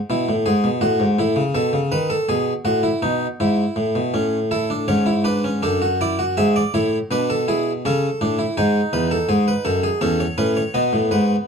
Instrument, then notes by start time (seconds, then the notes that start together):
harpsichord
0.10 B2 E4
0.29 A2
0.46 G#2 G#4
0.64 B2
0.81 A2 F#4
1.00 G#2
1.19 A2 E4
1.36 C#3
1.55 B2 A4
1.73 C#3
1.92 D#3 B4
2.10 A4
2.29 B2 G#4
2.65 A2 F#4
2.83 E4
3.02 B2 D#4
3.40 G#2 E4
3.76 A2
3.95 B2
4.14 A2 C#4
4.51 E4 A4
4.70 D4
4.88 G#2 C#4 C#5
5.06 E4
5.24 D4 B4
5.44 C#4
5.63 F#2 D4 A4
5.82 F#4
6.01 E4 D5
6.19 F#4
6.37 G#2 G#4 E5
6.56 D5
6.74 A2 E4 C#5
7.11 B2 D4 B4
7.30 A4
7.48 E4 G#4
7.85 C#3 C#4 A4
8.21 A2 D4
8.39 E4
8.57 G#2 D#4 G#4
8.93 E2 B4
9.11 A4
9.29 G#2 G#4
9.48 B4
9.65 F#2 A4
9.83 G#4
10.01 E2 C#4 A4
10.20 C#5
10.38 A2 C#4 B4
10.57 C#5
10.74 B2 B3 D#5
10.93 A2
11.11 G#2 B4